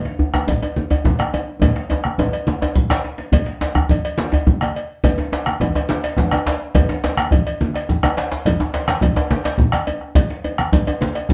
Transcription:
0.05 djembe slap
0.19 djembe slap, djembe tone, djembe bass
0.34 bombo rim, djembe tone, high conga
0.47 bombo low, cowbell, djembe bass, low conga
0.63 cowbell, djembe tone
0.76 djembe tone, high conga
0.90 bombo rim, cowbell, djembe slap, djembe bass
1.04 bombo rim, bombo low, djembe tone, djembe bass, low conga
1.19 bombo rim, cowbell, high conga
1.34 cowbell, djembe tone, high conga
1.61 bombo low, cowbell, high conga, djembe tone, djembe bass, low conga
1.76 bombo rim, djembe slap
1.90 cowbell, djembe slap, djembe tone, high conga
1.91 djembe tone
2.04 bombo rim, djembe slap, high conga
2.18 bombo low, cowbell, djembe tone, djembe bass, low conga
2.33 cowbell, high conga
2.47 high conga, djembe tone
2.62 bombo rim, cowbell, djembe tone, djembe bass
2.75 bombo low, djembe bass, low conga
2.90 bombo rim, cowbell, djembe slap, high conga, djembe bass
3.04 djembe slap
3.18 djembe slap, high conga
3.32 bombo low, cowbell, high conga, djembe bass, low conga
3.46 djembe slap
3.61 cowbell, djembe slap, djembe tone
3.75 bombo rim, high conga, djembe bass
3.89 cowbell, djembe bass, low conga
4.05 cowbell
4.18 djembe slap, high conga, djembe tone
4.32 bombo rim, cowbell, djembe slap, djembe bass
4.47 bombo rim, bombo low, djembe bass, low conga
4.61 bombo rim, cowbell, high conga
4.75 bombo rim, cowbell, high conga
5.04 bombo low, cowbell, high conga, djembe tone, djembe bass, low conga
5.18 djembe slap, djembe tone
5.32 cowbell, djembe slap, djembe tone
5.46 bombo rim, high conga
5.60 bombo low, cowbell, djembe tone, djembe bass, low conga
5.75 cowbell, djembe tone
5.89 djembe slap, high conga, djembe tone
6.03 bombo rim, cowbell, djembe slap
6.17 bombo rim, bombo low, djembe tone, low conga, djembe bass
6.31 bombo rim, cowbell, high conga, djembe tone
6.46 bombo rim, cowbell, djembe slap, djembe tone, high conga
6.75 bombo low, cowbell, high conga, djembe tone, low conga, djembe bass
6.89 djembe slap, djembe tone
7.04 cowbell, djembe slap, djembe tone
7.17 bombo rim, high conga
7.31 bombo low, cowbell, low conga, djembe bass
7.47 cowbell
7.61 djembe tone, high conga
7.74 bombo rim, cowbell, djembe slap
7.89 bombo rim, djembe bass, low conga
8.03 bombo rim, cowbell, djembe tone, high conga
8.17 bombo rim, cowbell, djembe slap, djembe tone, high conga
8.32 djembe slap
8.45 bombo low, cowbell, high conga, djembe bass, low conga
8.60 bombo rim, djembe slap, djembe tone, high conga
8.74 cowbell, djembe slap, high conga, djembe tone
8.88 bombo rim, djembe slap, high conga
9.01 bombo rim, bombo low, cowbell, low conga, djembe bass
9.16 bombo rim, cowbell, djembe slap, djembe tone, high conga
9.30 djembe slap, djembe tone, high conga
9.44 bombo rim, cowbell, djembe slap
9.58 bombo low, low conga, djembe bass
9.72 bombo rim, cowbell, high conga
9.87 cowbell, djembe slap, djembe tone
10.01 bombo rim, djembe slap
10.15 bombo low, cowbell, high conga, djembe bass, low conga
10.30 djembe slap
10.44 cowbell, djembe slap, djembe tone
10.58 bombo rim, high conga
10.73 bombo low, cowbell, djembe tone, djembe bass, low conga
10.87 cowbell, djembe tone
11.01 djembe slap, djembe tone, high conga
11.15 bombo rim, cowbell, djembe slap
11.29 bombo rim, bombo low, djembe bass, low conga

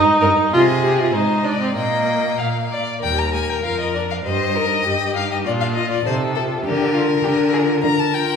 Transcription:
Already playing: D#4
0.21 G2 A#4 D#5
0.52 C3 F4 G#4 D#5
0.83 G4
0.99 F4
1.13 G#2 D#4 C5 D#5
1.44 D4 D5
1.61 C4
1.76 A#2 A#3 D#5 G5
2.39 A#2 F5
2.71 D5
3.03 D#2 G3 A#4 G5
3.19 A#5
3.33 A#3 G#5
3.49 G5
3.63 F2 F4 F5
3.80 D#5
3.94 D4 D5
4.10 F5
4.24 G2 G4 C5 D#5
4.55 D#4 A#4
4.85 G2 G4
5.16 D#4 F5
5.31 D#5
5.45 A#2 D4 F4 D5
5.61 F5
5.75 F4 D#5
5.90 D5
6.05 C3 D#4 A4 C5
6.35 F4 A4
6.64 D3 D4 G4 A#4
6.94 F4
7.24 D3 D4 G4
7.53 F4 G#4
7.82 D3 A#4 A#5
7.99 A5
8.13 F4 G5

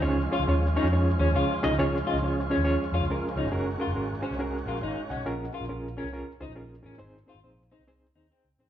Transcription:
Already playing: G#3
0.02 C#2 F3 C#4 F4 G#4 C#5
0.32 C#4 F4 G#4 C#5
0.39 C#2
0.47 D#2 C#4 F4 G#4 C#5
0.76 C#4 D#4 F4 G#4 C#5
0.84 F2
0.92 C#4 F4 G#4 C#5
1.19 D#2 C#4 F4 G#4 C#5
1.34 C#2 C#4 F4 G#4 C#5
1.63 C2 C#4 D#4 F4 G#4 D#5
1.71 C#2
1.78 C#2 F3 G#3 C#4 F4 G#4 C#5
2.06 C#4 F4 G#4 D#5
2.14 C#2
2.22 C#2 C#4 F4 G#4 C#5
2.50 C#4 F4 G#4 C#5
2.57 D#2
2.64 C#4 F4 G#4 C#5
2.92 F2 C#4 F4 G#4 C#5
3.00 C#2
3.10 C#4 F4 G#4 A#4
3.36 C#2 C#4 D#4 F4 G#4 C#5
3.45 G#1
3.52 F#1 A#3 C#4 F#4 G#4 A#4
3.78 C#4 F4 F#4 G#4 A#4
3.87 F#1
3.95 G#1 C#4 F#4 G#4 A#4
4.22 C#4 F#4 G#4 C5
4.31 C2
4.39 C#4 F#4 G#4 A#4
4.66 A#1 C#4 F4 F#4 G#4 A#4
4.82 G#1 D#4 C#5 F5
5.10 C2 C#4 D#5 F#5
5.17 B1
5.25 A#1 C#4 F4 G#4 A#4
5.53 C#4 F4 G#4 A#4
5.61 A#1
5.69 A#1 C#4 F4 G#4 A#4
5.97 C#4 F4 G#4 A#4
6.04 C2
6.13 C#4 F4 G#4 A#4
6.40 C#2 C#4 D#4 F4 G#4 C5
6.48 A#1
6.55 A#1 C#4 F4 G#4 A#4
6.82 A1 C#4 F4 G#4 A#4
6.98 G#1 C4 D#4 G#4 C5
7.26 C4 D#4 F4 G#4 C5
7.35 G#1
7.44 A#1 C4 D#4 G#4 C5
7.72 C4 D#4 G#4 C5
7.79 C2
7.87 C4 D#4 G#4 C5
8.15 D#2 C4 D#4 G#4 C5
8.31 C4 D#4 G#4 C5
8.45 C#2
8.58 A#1 C4 D#4 G#4 C5
8.66 A1

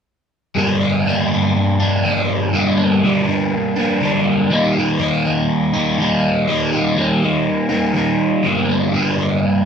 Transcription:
0.55 G2 D3 G3 A#3 D4
0.81 G3 A#3 D4
1.06 G2 D3 G3 A#3 D4
1.30 A#3 D4
1.35 G3
1.80 A#3 D4
1.84 G3
2.04 D3 G3 A#3 D4
2.53 G2 D3 G3 A#3 D4
2.77 A#3 D4
2.81 G3
3.02 G2 D3 G3 A#3
3.07 D4
3.28 G3 A#3 D4
3.76 A#3 D4
3.81 G3
4.01 D3 G3 A#3 D4
4.50 D#3 G3 A#3 D#4
4.76 G3 A#3 D#4
4.99 D#3 G3 A#3
5.03 D#4
5.24 G3 A#3 D#4
5.73 A#3 D#4
5.78 G3
5.98 D#3 G3 A#3
6.02 D#4
6.48 D#3 G3 A#3 D#4
6.72 G3 A#3 D#4
6.96 D#3 G3 A#3
7.01 D#4
7.22 G3 A#3 D#4
7.69 A#3 D#4
7.74 G3
7.94 D#3 G3 A#3 D#4
8.43 G2 D3 G3 A#3 D4
8.69 G3 A#3 D4
8.92 G2 D3 G3 A#3 D4
9.18 G3 A#3 D4

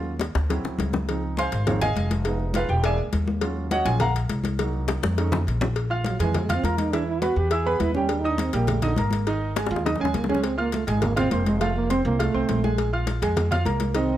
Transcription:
Already playing: D#2 F#3 C#4 F4
0.05 high conga
0.19 cowbell, high bongo, high conga
0.35 D2, high bongo, high conga
0.49 F#3 C4 E4, cowbell, low bongo, high conga
0.64 D2, low bongo, high conga
0.78 C#2, cowbell, low bongo, high conga
0.93 low bongo, high conga
1.09 F3 C4 D#4, cowbell, high conga
1.23 high conga
1.37 C5 F5 G#5 C6, cowbell, high conga
1.52 G#1, cowbell, high conga
1.67 F3 C4 D#4 F4 C5 C#5 F5, cowbell, high conga, low conga
1.81 G#4 D#5 F5 G#5, cowbell, high conga, low conga
1.96 F1, cowbell, high conga
2.11 cowbell, high conga
2.25 G#3 B3 D#4, cowbell, high conga
2.40 high conga
2.54 F4 G#4 B4 F5, cowbell, high conga
2.69 E1 G4 G5, high conga
2.84 G#3 A#3 D4 G#4 D5 E5 G#5, cowbell, high conga
2.98 C#2, high conga
3.13 D#2, cowbell, high conga
3.27 high conga
3.41 F#3 C#4 F4, cowbell
3.57 high conga
3.71 F#4 C#5 D#5 F#5, cowbell, high conga
3.85 A#1 F#3 C#4 F4 G#4 G#5, cowbell
4.00 A#4 F5 F#5 A#5, cowbell, high conga, low conga
4.15 cowbell, high conga
4.29 C2, cowbell, high conga
4.44 cowbell, high conga
4.59 F#3 A#3 D#4, cowbell
4.73 high conga
4.88 cowbell, high bongo, high conga
5.03 F2, high bongo, high conga
5.17 A3 C#4 D#4, cowbell, high bongo
5.32 low bongo, low conga
5.47 A#1, cowbell
5.61 low bongo, low conga
5.75 cowbell, high conga
5.90 F4 F5 F6, high conga
6.04 F#3, cowbell, high conga
6.19 F2 E3 G#3 G#4 G#5, cowbell, high conga
6.34 F3, cowbell, high conga, low conga
6.45 G#3 F4, high conga, low conga
6.50 F5 F6, cowbell
6.55 C4
6.63 E2 A#3 F4 A#4 A#5, cowbell, high conga
6.78 D#4, cowbell, high conga
6.92 E3 D4 E4 E5, cowbell, high conga
7.07 E4, high conga
7.22 B3 F#4 B4 B5, cowbell, high conga
7.36 E2 G4, high conga
7.50 E4 G#4 E5 E6, cowbell, high conga
7.66 B3 B4 B5, high conga
7.80 D#2 E4, cowbell, high conga
7.94 G3 C#4 G4 G5, high conga
8.09 D4, cowbell
8.19 D#4
8.24 D#4 D#5 D#6, high conga
8.29 D4
8.38 C4, cowbell, high conga
8.53 A#1 G3 A#3 G4 G5, cowbell, high conga
8.67 A3, cowbell, high conga, low conga
8.82 D3 D#4 D#5 D#6, cowbell, high conga, low conga
8.96 G#1 A#3 A#4 A#5, cowbell, high conga
9.11 cowbell, high conga
9.26 D#3 D#4 D#5, cowbell, high conga
9.42 high conga
9.56 G#3 G#4 G#5, cowbell, high bongo, high conga
9.66 high bongo
9.70 D#2 F4, high conga
9.76 high bongo
9.86 D#4 D#5 D#6, cowbell, low bongo, high conga
9.96 C#4, low bongo
10.00 D#2 G#3 G#4 G#5, high conga
10.05 low bongo
10.14 C#2 A#3, cowbell, low bongo, high conga
10.24 low bongo
10.29 G#3 C#4 G#4 G#5, high conga
10.34 low bongo
10.44 C4, cowbell, high conga
10.58 A#3 F4 F5 F6, high conga
10.72 A3, cowbell, high conga
10.87 G#1 G#3 G#4 G#5, cowbell, high conga
11.02 A#3, cowbell, high conga, low conga
11.16 C4 F4 F5 F6, cowbell, high conga, low conga
11.31 F1 A#3 C4 C5 C6, cowbell, high conga
11.45 G#3, cowbell, high conga
11.61 F3 A3 F4 F5, cowbell, high conga
11.75 A#3, high conga
11.90 C4 C5 C6, cowbell, high conga
12.05 C2 A#3, high conga
12.19 A3 F4 F5 F6, cowbell, high conga
12.34 C2 C4 C5 C6, high conga
12.49 A#1, cowbell, high conga
12.64 G#3 G#4 G#5, high conga
12.78 cowbell, high conga
12.93 F4 F5 F6, high conga
13.07 cowbell, high conga
13.22 F2 G#3 G#4 G#5, cowbell, high conga
13.37 cowbell, high conga, low conga
13.51 F4 F5 F6, cowbell, high conga, low conga
13.65 C2 A#3 A#4 A#5, cowbell, high conga
13.80 cowbell, high conga
13.95 D#3 C4 D#4 D#5, cowbell, high conga
14.10 high conga

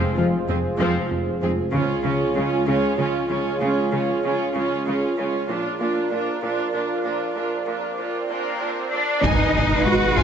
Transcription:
Already playing: F1 F3 G#3 C4 F4 G#4 C5
0.17 F2 F3 G#3 F4
0.48 F2 C4 G#4
0.79 F2 F3 C4
1.11 F2
1.42 F2 C4 G#4
1.73 C#2 C#3 G#3 C#4 F4 G#4 C#5, taiko
2.04 C#3 C#4 F4
2.35 C#2 C#3 C#4 F4
2.67 C#2 C#3 C#4 F4
2.98 C#2 C#3 C#4 F4
3.30 C#2 C#3 C#4 F4
3.60 C#2 C#3 C#4 F4
3.92 C#3 C#4 F4
4.24 C#2 C#3 C#4 F4
4.55 C#2 C#3 C#4 F4
4.86 C#2 C#3 C#4 F4
5.17 C#2 C#3 C#4 F4
5.49 A#1 A#2 F3 D4 F4 A#4 D5, taiko
5.80 A#2 A#3 D4 F4
6.11 A#2 D4 F4
6.42 A#2 D4 F4
6.74 A#2 D4 F4
6.89 taiko
7.05 A#2 D4 F4
7.35 A#1 A#2 D4 F4, swell
7.66 A#2 A#3 D4 F4
7.98 A#2 D4 F4
8.29 A#2 A#3 D4 F4 A#4
8.60 A#2 D4 F4
8.92 A#2 D4 F4 D5
9.23 G#1 G#2 B2 G#3 D#4 G#4 B4 D#5 G#5, taiko, impact
9.55 G#1 G#2 G#5
9.85 G#1 G#3 F#4 D#5 F#5
10.17 G#1 G#2 F4 F5 G#5, taiko

